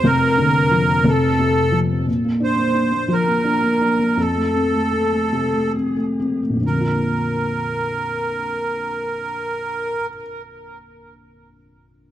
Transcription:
<<
  \new Staff \with { instrumentName = "Accordion" } { \time 6/8 \key bes \major \tempo 4. = 50 bes'4. a'4 r8 | r8 c''4 bes'4. | a'2 r4 | bes'2.~ |
bes'2. | }
  \new Staff \with { instrumentName = "Felt piano" } { \time 6/8 \key bes \major <f,, f,>8 d8 f8 <f,, f,>8 c8 f8 | bes,16 bes16 d'16 bes16 d'16 bes16 f16 bes16 d'16 bes16 d'16 bes16 | f,16 a16 c'16 a16 c'16 a16 c16 a16 c'16 a16 c'16 a16 | <bes,, f, d f bes f'>2.~ |
<bes,, f, d f bes f'>2. | }
>>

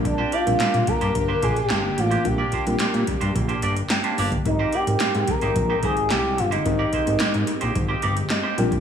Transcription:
<<
  \new Staff \with { instrumentName = "Analog synth lead" } { \time 4/4 \key aes \lydian \tempo 4 = 109 d'8 f'4 bes'4 aes'16 g'8. f'8 | g'2 r2 | ees'8 g'4 bes'4 aes'8 g'8 f'16 ees'16~ | ees'2~ ees'8. r4 r16 | }
  \new Staff \with { instrumentName = "Clean electric guitar" } { \time 4/4 \key aes \lydian r16 <bes d' g' c''>16 <bes d' g' d''>16 r16 <bes d' g' c''>16 r8 <bes d' g' c''>16 r16 <bes d' g' c''>16 <bes d' g' c''>16 r16 <bes d' g' c''>16 r8 <bes d' g' c''>16 | r16 <bes d' g' d''>16 <bes d' g' c''>16 r16 <bes d' g' c''>16 r8 <bes d' g' c''>16 r16 <bes d' g' c''>16 <bes d' g' d''>16 r8 <bes d' g' c''>16 <bes d' g' d''>16 r16 | r16 <bes ees' g' c''>16 <bes ees' g' d''>16 r16 <bes ees' g' c''>16 r8 <bes ees' g' c''>16 r16 <bes ees' g' c''>16 <bes ees' g' c''>16 r16 <bes ees' g' c''>16 r8 <bes ees' g' c''>16 | r16 <bes ees' g' d''>16 <bes ees' g' c''>16 r16 <bes ees' g' c''>16 r8 <bes ees' g' c''>16 r16 <bes ees' g' c''>16 <bes ees' g' d''>16 r8 <bes ees' g' c''>16 r8 | }
  \new Staff \with { instrumentName = "Tine electric piano" } { \time 4/4 \key aes \lydian <g c' d' f' bes'>16 r16 <f' c''>16 <g c' d' f' bes'>8. r2 r8 | <g c' d' f' bes'>16 r16 <f' g'>16 <g c' d' f' bes'>8. r4. g''4 | <aes c' ees' g' bes'>16 r16 <g' bes'>16 <aes c' ees' g' bes'>8. r2 r8 | <aes c' ees' g' bes'>16 r16 <g' bes'>16 <aes c' ees' g' bes'>8. r4. ees''8 <g c' d' f' bes' g''>8 | }
  \new Staff \with { instrumentName = "Analog synth pad" } { \time 4/4 \key aes \lydian << { g'1~ | g'1 | g'1~ | g'1 | } \\ { <bes d'>1~ | <bes d'>1 | <aes c'>1~ | <aes c'>2.~ <aes c'>8 <bes d'>8 | } >> }
  \new Staff \with { instrumentName = "Analog synth bass" } { \clef bass \time 4/4 \key aes \lydian bes,,8 r16 bes,,16 bes,16 bes,16 r16 g,16 g,,8 bes,,8 g,,8 a,,8 | bes,,8 r16 bes,,16 bes,16 bes,16 r16 g,16 bes,,8 g,,8 r8 g,,8 | aes,,8 r16 aes,,16 aes,16 aes,16 r16 aes,,16 bes,,8 aes,,8 c,8 g,,8 | aes,,8 r16 aes,,16 aes,16 aes,16 r16 bes,,16 aes,,8 g,,8 r8 bes,,8 | }
  \new DrumStaff \with { instrumentName = "Drums" } \drummode { \time 4/4 <hh bd>8 hh16 hh16 <hc hh sn>16 hh16 <hh bd>16 hh16 <hh bd>8 <hh bd>16 hh16 <hc hh sn>8 hh16 hh16 | <hh bd>8 <hh bd>16 hh16 <hc hh sn>16 hh16 <hh bd>16 hh16 <hh bd>16 hh16 hh16 hh16 <hc hh sn>16 hh16 hho16 <hh bd>16 | <hh bd>8 hh16 hh16 <hc hh sn>16 hh16 <hh bd>16 hh16 <hh bd>8 <hh bd>16 hh16 <hc hh sn>8 hh16 hh16 | <hh bd>8 <hh bd>16 hh16 <hc hh sn>16 hh16 hh16 hh16 <hh bd>8 hh16 hh16 <hc hh sn>8 hh16 <hh bd>16 | }
>>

